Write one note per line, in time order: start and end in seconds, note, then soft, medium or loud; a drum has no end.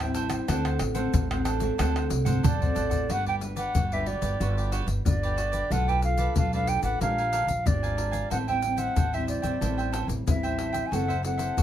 0.00 0.39 A1 medium
0.00 0.46 E3 medium
0.00 0.44 G3 medium
0.00 0.45 C4 medium
0.00 0.45 E4 medium
0.00 0.14 C5 soft
0.00 0.14 E5 soft
0.00 0.15 G5 medium
0.00 pandeiro soft
0.00 tamborim medium
0.00 shaker soft
0.14 0.30 A4 medium
0.14 0.30 C5 medium
0.14 0.29 E5 medium
0.14 0.28 G5 medium
0.14 pandeiro medium
0.14 shaker medium
0.30 0.47 C5 soft
0.30 0.46 E5 soft
0.30 0.46 G5 soft
0.30 pandeiro medium
0.30 tamborim medium
0.30 shaker medium
0.30 surdo soft
0.48 0.76 D2 medium
0.48 1.11 D3 medium
0.48 0.93 A3 medium
0.48 0.93 C4 medium
0.48 0.63 D4 medium
0.48 0.93 F#4 medium
0.48 0.63 A4 medium
0.48 0.64 C5 medium
0.48 0.64 F#5 medium
0.48 pandeiro medium
0.48 tamborim medium
0.48 shaker medium
0.48 surdo medium
0.65 0.78 A4 soft
0.65 0.78 C5 soft
0.65 0.79 F#5 soft
0.65 pandeiro soft
0.65 tamborim medium
0.65 shaker soft
0.65 surdo soft
0.79 1.08 A1 medium
0.79 pandeiro medium
0.79 tamborim medium
0.79 shaker medium
0.95 1.24 A3 medium
0.95 1.24 C4 medium
0.95 1.24 F#4 medium
0.95 1.28 A4 medium
0.95 1.28 C5 medium
0.95 1.27 F#5 medium
0.95 pandeiro medium
0.95 shaker medium
1.14 1.69 A1 loud
1.14 1.76 A2 soft
1.14 pandeiro medium
1.14 shaker medium
1.14 surdo loud
1.30 1.58 A3 medium
1.30 1.58 C4 medium
1.30 1.59 F#4 medium
1.30 1.44 A4 soft
1.30 1.44 C5 soft
1.30 1.45 F#5 soft
1.30 pandeiro soft
1.30 tamborim medium
1.30 shaker soft
1.45 1.77 D4 soft
1.45 1.77 A4 soft
1.45 1.77 C5 soft
1.45 1.78 F#5 medium
1.45 pandeiro medium
1.45 tamborim medium
1.45 shaker medium
1.60 1.73 A3 medium
1.60 1.73 C4 medium
1.60 1.73 F#4 medium
1.60 pandeiro medium
1.60 shaker medium
1.60 surdo soft
1.78 2.07 D2 medium
1.78 2.41 D3 medium
1.78 2.23 A3 medium
1.78 2.23 C4 medium
1.78 1.94 D4 medium
1.78 2.23 F#4 medium
1.78 1.94 A4 medium
1.78 1.94 C5 medium
1.78 1.94 F#5 medium
1.78 pandeiro medium
1.78 tamborim medium
1.78 shaker medium
1.78 surdo medium
1.95 2.09 A4 soft
1.95 2.09 C5 soft
1.95 2.10 F#5 soft
1.95 pandeiro soft
1.95 tamborim medium
1.95 shaker soft
2.10 2.40 C2 medium
2.10 muted cavaquinho stroke soft
2.10 pandeiro medium
2.10 shaker medium
2.25 2.54 A3 medium
2.25 2.54 C4 medium
2.25 2.55 F#4 medium
2.25 2.42 A4 medium
2.25 2.42 C5 medium
2.25 2.42 F#5 medium
2.25 surdo loud
2.25 pandeiro medium
2.25 shaker medium
2.25 surdo soft
2.43 2.74 B1 medium
2.43 3.06 A2 medium
2.43 2.59 D4 medium
2.43 2.59 A4 medium
2.43 2.59 C5 medium
2.43 3.13 D5 medium
2.43 2.59 F#5 medium
2.43 surdo loud
2.43 pandeiro medium
2.43 shaker medium
2.43 surdo loud
2.60 3.05 A3 medium
2.60 3.05 C4 medium
2.60 3.05 F#4 medium
2.60 2.74 A4 soft
2.60 2.75 C5 soft
2.60 2.75 F#5 soft
2.60 pandeiro soft
2.60 shaker soft
2.60 surdo medium
2.75 3.06 A1 medium
2.75 2.91 D4 medium
2.75 2.90 A4 medium
2.75 2.89 C5 medium
2.75 2.88 F#5 medium
2.75 pandeiro medium
2.75 shaker medium
2.90 3.07 A4 soft
2.90 3.07 C5 soft
2.90 3.07 F#5 soft
2.90 pandeiro medium
2.90 shaker medium
2.90 surdo medium
3.09 3.65 G1 medium
3.09 3.72 G3 medium
3.09 3.29 D4 medium
3.09 3.24 F#4 soft
3.09 3.29 F#4 medium
3.09 3.25 G4 soft
3.09 3.25 B4 soft
3.09 3.29 B4 medium
3.09 3.25 D5 soft
3.09 3.27 F#5 loud
3.09 pandeiro medium
3.09 shaker medium
3.09 surdo soft
3.26 3.41 G4 medium
3.26 3.41 B4 medium
3.26 3.41 D5 medium
3.26 3.35 G5 medium
3.26 pandeiro soft
3.26 shaker soft
3.26 surdo soft
3.41 3.72 D4 medium
3.41 3.72 F#4 medium
3.41 3.73 B4 medium
3.41 muted cavaquinho stroke soft
3.41 pandeiro medium
3.41 shaker medium
3.56 3.73 G4 medium
3.56 3.73 B4 medium
3.56 3.72 D5 medium
3.56 3.95 F#5 medium
3.56 pandeiro medium
3.56 shaker medium
3.75 4.16 G1 medium
3.75 4.37 D3 soft
3.75 3.90 F#4 soft
3.75 3.90 G4 soft
3.75 3.91 B4 soft
3.75 3.91 D5 soft
3.75 pandeiro medium
3.75 shaker medium
3.75 surdo loud
3.92 4.02 D4 medium
3.92 4.03 F#4 medium
3.92 4.22 G4 medium
3.92 4.03 B4 medium
3.92 4.21 B4 medium
3.92 4.21 D5 medium
3.92 4.08 E5 medium
3.92 pandeiro soft
3.92 shaker soft
4.06 4.34 D4 medium
4.06 4.34 F#4 medium
4.06 4.34 B4 medium
4.06 4.72 D5 medium
4.06 pandeiro medium
4.06 surdo soft
4.22 4.36 G1 medium
4.22 4.38 G4 soft
4.22 4.38 B4 medium
4.22 4.38 D5 medium
4.22 pandeiro medium
4.22 shaker medium
4.22 surdo soft
4.39 4.82 G1 medium
4.39 5.02 G3 medium
4.39 5.00 D4 medium
4.39 5.00 F#4 medium
4.39 4.55 F#4 soft
4.39 4.56 G4 soft
4.39 5.00 B4 medium
4.39 4.56 B4 soft
4.39 4.56 D5 soft
4.39 pandeiro medium
4.39 shaker medium
4.39 surdo medium
4.57 4.72 G4 soft
4.57 4.72 B4 medium
4.57 4.72 D5 medium
4.57 pandeiro soft
4.57 shaker soft
4.72 4.87 F#4 medium
4.72 4.87 G4 medium
4.72 4.87 B4 medium
4.72 4.87 D5 medium
4.72 pandeiro medium
4.72 shaker medium
4.87 5.01 G1 medium
4.87 muted cavaquinho stroke soft
4.87 pandeiro medium
4.87 shaker medium
4.87 surdo soft
5.05 5.61 G1 medium
5.05 5.67 D3 soft
5.05 5.65 D4 medium
5.05 5.65 F#4 medium
5.05 5.66 B4 medium
5.05 5.73 D5 medium
5.05 pandeiro medium
5.05 shaker medium
5.05 surdo loud
5.23 5.36 G4 medium
5.23 5.37 B4 medium
5.23 5.37 D5 medium
5.23 pandeiro soft
5.23 shaker soft
5.37 5.52 F#4 soft
5.37 5.52 G4 soft
5.37 5.52 B4 soft
5.37 5.51 D5 soft
5.37 pandeiro medium
5.37 shaker medium
5.52 5.69 G4 soft
5.52 5.69 B4 medium
5.52 5.68 D5 medium
5.52 pandeiro medium
5.52 shaker medium
5.52 surdo soft
5.70 6.26 B1 medium
5.70 6.33 B2 medium
5.70 5.98 A3 medium
5.70 5.98 D4 medium
5.70 5.86 F4 soft
5.70 5.98 F4 medium
5.70 5.86 A4 soft
5.70 5.86 B4 soft
5.70 5.86 D5 medium
5.70 5.90 F#5 loud
5.70 pandeiro medium
5.70 shaker medium
5.70 surdo medium
5.88 6.02 A4 medium
5.88 6.03 B4 medium
5.88 6.02 D5 medium
5.88 6.03 G5 medium
5.88 pandeiro soft
5.88 shaker soft
5.88 surdo soft
6.02 6.46 A3 medium
6.02 6.46 D4 medium
6.02 6.47 F4 medium
6.02 6.34 F5 medium
6.02 muted cavaquinho stroke soft
6.02 pandeiro medium
6.02 shaker medium
6.18 6.35 A4 medium
6.18 6.34 B4 medium
6.18 6.34 D5 medium
6.18 pandeiro medium
6.18 shaker medium
6.36 6.78 B1 medium
6.36 6.98 B2 medium
6.36 6.51 F4 soft
6.36 6.52 A4 soft
6.36 6.52 B4 soft
6.36 6.52 D5 soft
6.36 6.52 F5 medium
6.36 pandeiro medium
6.36 shaker medium
6.36 surdo loud
6.53 6.96 A3 medium
6.53 6.96 D4 medium
6.53 6.96 F4 medium
6.53 6.83 A4 medium
6.53 6.83 B4 medium
6.53 6.81 D5 medium
6.53 6.70 F5 medium
6.53 pandeiro soft
6.53 shaker soft
6.67 6.83 G5 medium
6.67 pandeiro medium
6.67 shaker medium
6.67 surdo soft
6.82 6.97 A1 medium
6.82 7.00 A4 soft
6.82 6.99 B4 soft
6.82 6.99 D5 medium
6.82 6.99 F#5 medium
6.82 pandeiro medium
6.82 shaker medium
6.82 surdo soft
7.01 7.42 A#1 medium
7.01 7.63 A#2 soft
7.01 7.43 G#3 soft
7.01 7.16 D4 soft
7.01 7.43 D4 medium
7.01 7.44 G4 medium
7.01 7.16 A#4 soft
7.01 7.68 F5 loud
7.01 7.17 F5 medium
7.01 7.17 G#5 soft
7.01 pandeiro medium
7.01 shaker medium
7.01 surdo medium
7.18 7.32 A#4 medium
7.18 7.33 F5 medium
7.18 7.33 G#5 medium
7.18 pandeiro soft
7.18 shaker soft
7.33 7.46 D4 medium
7.33 7.47 A#4 medium
7.33 7.47 F5 medium
7.33 7.47 G#5 medium
7.33 pandeiro medium
7.33 shaker medium
7.47 7.62 A#1 medium
7.47 muted cavaquinho stroke soft
7.47 pandeiro medium
7.47 shaker medium
7.47 surdo soft
7.66 8.21 G#1 medium
7.66 8.28 F3 soft
7.66 8.26 G#3 soft
7.66 8.27 D4 medium
7.66 8.27 G4 medium
7.66 8.31 D5 medium
7.66 pandeiro medium
7.66 shaker medium
7.66 surdo loud
7.83 7.96 A#4 medium
7.83 7.97 F5 medium
7.83 7.97 G#5 medium
7.83 pandeiro soft
7.83 shaker soft
7.97 8.13 D4 soft
7.97 8.12 A#4 soft
7.97 8.11 F5 soft
7.97 8.10 G#5 soft
7.97 pandeiro medium
8.11 8.29 A#4 medium
8.11 8.29 F5 medium
8.11 8.28 G#5 medium
8.11 pandeiro soft
8.11 shaker medium
8.11 surdo soft
8.30 8.87 A1 medium
8.30 8.93 A2 medium
8.30 8.42 G3 medium
8.30 8.43 C4 medium
8.30 8.43 E4 medium
8.30 8.46 A4 soft
8.30 8.46 C5 soft
8.30 8.46 E5 soft
8.30 8.37 F#5 loud
8.30 8.46 G5 medium
8.30 pandeiro medium
8.30 shaker medium
8.30 surdo medium
8.47 8.59 G3 medium
8.47 8.59 C4 medium
8.47 8.59 E4 medium
8.47 8.60 C5 soft
8.47 8.61 E5 medium
8.47 8.61 G5 medium
8.47 8.80 G5 medium
8.47 pandeiro soft
8.47 shaker soft
8.47 surdo soft
8.61 8.94 G3 medium
8.61 8.94 C4 medium
8.61 8.94 E4 medium
8.61 muted cavaquinho stroke soft
8.61 pandeiro medium
8.61 shaker medium
8.76 8.94 C5 soft
8.76 8.94 E5 medium
8.76 9.16 F#5 medium
8.76 8.94 G5 medium
8.76 pandeiro medium
8.76 shaker medium
8.95 9.38 A1 medium
8.95 9.58 E3 medium
8.95 9.11 A4 soft
8.95 9.12 C5 soft
8.95 9.12 E5 soft
8.95 9.12 G5 soft
8.95 pandeiro medium
8.95 shaker medium
8.95 surdo loud
9.13 9.41 G3 soft
9.13 9.41 C4 medium
9.13 9.41 E4 medium
9.13 9.43 C5 medium
9.13 9.42 E5 medium
9.13 9.28 E5 medium
9.13 9.41 G5 medium
9.13 pandeiro soft
9.13 shaker soft
9.28 9.90 D5 medium
9.28 pandeiro medium
9.28 shaker medium
9.28 surdo soft
9.42 9.58 A1 medium
9.42 9.55 G3 medium
9.42 9.56 C4 medium
9.42 9.56 E4 medium
9.42 9.60 C5 soft
9.42 9.59 E5 medium
9.42 9.59 G5 medium
9.42 pandeiro medium
9.42 shaker medium
9.42 surdo soft
9.61 10.03 A1 medium
9.61 10.24 A2 medium
9.61 10.22 G3 medium
9.61 10.22 C4 medium
9.61 10.22 E4 medium
9.61 9.76 A4 soft
9.61 9.77 C5 soft
9.61 9.77 E5 soft
9.61 9.76 G5 soft
9.61 pandeiro medium
9.61 shaker medium
9.61 surdo medium
9.78 9.92 C5 medium
9.78 9.92 E5 medium
9.78 9.93 G5 medium
9.78 pandeiro soft
9.78 shaker soft
9.92 10.07 A4 medium
9.92 10.07 C5 medium
9.92 10.07 E5 medium
9.92 10.08 G5 medium
9.92 pandeiro medium
9.92 shaker medium
10.08 10.23 A1 medium
10.08 muted cavaquinho stroke soft
10.08 pandeiro medium
10.08 shaker medium
10.08 surdo soft
10.27 10.82 A1 medium
10.27 10.89 E3 soft
10.27 10.87 G3 soft
10.27 10.87 C4 medium
10.27 10.88 E4 medium
10.27 10.88 E5 medium
10.27 pandeiro medium
10.27 shaker medium
10.27 surdo medium
10.43 10.57 C5 soft
10.43 10.57 E5 medium
10.43 10.58 G5 medium
10.43 pandeiro soft
10.43 shaker soft
10.58 10.74 A4 soft
10.58 10.73 C5 soft
10.58 10.73 E5 soft
10.58 10.71 G5 soft
10.58 pandeiro medium
10.73 10.90 C5 soft
10.73 10.90 E5 medium
10.73 10.89 G5 medium
10.73 pandeiro medium
10.73 shaker medium
10.73 surdo soft
10.86 10.96 G#5 medium
10.91 11.47 F#1 medium
10.91 11.54 F#3 medium
10.91 11.11 C4 medium
10.91 11.11 E4 medium
10.91 11.07 F#4 soft
10.91 11.07 A4 soft
10.91 11.12 A4 medium
10.91 11.07 C5 soft
10.91 11.07 E5 medium
10.91 11.25 F#5 medium
10.91 pandeiro medium
10.91 shaker medium
10.91 surdo medium
11.08 11.22 A4 medium
11.08 11.22 C5 medium
11.08 11.22 E5 medium
11.08 pandeiro soft
11.08 shaker soft
11.08 surdo soft
11.22 11.55 C4 medium
11.22 11.55 E4 medium
11.22 11.55 A4 medium
11.22 11.63 F#5 medium
11.22 muted cavaquinho stroke soft
11.22 pandeiro medium
11.22 shaker medium
11.38 11.55 A4 medium
11.38 11.55 C5 medium
11.38 11.55 E5 medium
11.38 pandeiro medium
11.38 shaker medium
11.57 11.63 F#1 medium
11.57 11.63 F#3 medium
11.57 11.63 F#4 soft
11.57 11.63 A4 soft
11.57 11.63 C5 soft
11.57 11.63 E5 soft
11.57 pandeiro medium
11.57 shaker medium
11.57 surdo medium